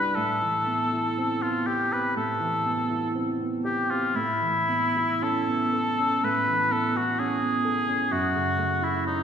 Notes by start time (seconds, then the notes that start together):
Already playing: C2 G2 G3 D4 E4 G4 B4
0.15 A2 A4
0.42 E3
0.66 B3
0.92 E4
1.18 C4
1.42 B3 F4
1.67 G4
1.92 C4 B4
2.16 A2 A4
2.40 E3
2.66 B3
2.90 E4
3.15 C4
3.41 B3
3.65 G4
3.90 C4 F4
4.15 A2 E4
4.41 E3
4.68 B3
4.96 E4
5.22 C#4 A4
5.48 B3
5.73 A4
5.99 C#4
6.23 A2 B4
6.48 E3
6.71 B3 A4
6.95 E4 F#4
7.19 C#4 G#4
7.41 B3
7.65 A4
7.88 C#4
8.12 F#2 F#4
8.35 C#3
8.58 A3
8.82 E4
9.07 C#4 D#4